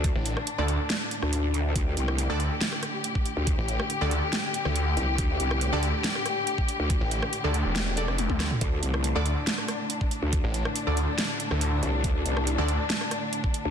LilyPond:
<<
  \new Staff \with { instrumentName = "Synth stab" } { \time 4/4 \key c \mixolydian \tempo 4 = 140 r4 r16 <d' a' d''>16 r2 r8 | r4 r16 <d' a' d''>16 r2 r8 | r4 r16 <d' a' d''>16 r2 r8 | r4 r16 <d' a' d''>16 r2 r8 |
r4 r16 <d' a' d''>16 r4 <d' a' d''>16 r4 r16 | r4 r16 <d' a' d''>16 r2 r8 | r4 r16 <d' a' d''>16 r2 r8 | r4 r16 <d' a' d''>16 r2 r8 | }
  \new Staff \with { instrumentName = "String section" } { \time 4/4 \key c \mixolydian << { d'1 | g'1~ | g'1~ | g'1~ |
g'1 | d'1~ | d'1~ | d'1 | } \\ { <a, d>1~ | <a, d>1~ | <a, d>1~ | <a, d>1~ |
<a, d>1~ | <a, d>1~ | <a, d>1~ | <a, d>1 | } >> }
  \new Staff \with { instrumentName = "Detuned saw bass" } { \clef bass \time 4/4 \key c \mixolydian r16 a,,8 r8 d,8 r2 r16 | r4 r16 d,8 r2 r16 | r16 a,,8 r8 d,8 r4 d,8. r8 | r4 r16 d,8 r2 r16 |
r16 a,,8 r8 d,8 e,,4 f,,8 d,8 r16 | r4 r16 d,8 r2 r16 | r16 a,,8 r8 d,8 r4 d,8. r8 | r4 r16 d,8 r2 r16 | }
  \new Staff \with { instrumentName = "Wobble bass" } { \clef bass \time 4/4 \key c \mixolydian d,16 r2 r8 d,4~ d,16 | d,8 c,8. r2 r8 d,16~ | d,16 r2. r16 c,8 | d,8 c,8. r2 r8 d,16~ |
d,16 r2. r8. | d,8 c,8. r2 r8 d,16~ | d,16 r2. r16 c,8 | d,8 c,8. r2 r8 d,16 | }
  \new DrumStaff \with { instrumentName = "Drums" } \drummode { \time 4/4 <hh bd>8 hh16 ss16 hh8 hh8 <hh sn>8 hh16 ss16 hh8 hh8 | <hh bd>8 hh16 ss16 hh8 hh8 <hh sn>16 ss16 <hh ss>8 hh16 bd16 hh8 | <hh bd>8 hh16 ss16 hh8 hh8 <hh sn>8 hh16 ss16 hh8 hh8 | <hh bd>8 hh16 ss16 hh8 hh8 <hh sn>16 ss16 <hh ss>8 hh16 bd16 hh8 |
<hh bd>8 hh16 ss16 hh8 hh8 <hh sn>8 hh16 ss16 <hh tommh>16 <bd tommh>16 <hh ss sn>16 toml16 | <hh bd>8 hh16 ss16 hh8 hh8 <hh sn>16 ss16 <hh ss>8 hh16 bd16 hh8 | <hh bd>8 hh16 ss16 hh8 hh8 <hh sn>8 hh16 ss16 hh8 hh8 | <hh bd>8 hh16 ss16 hh8 hh8 <hh sn>16 ss16 <hh ss>8 hh16 bd16 hh8 | }
>>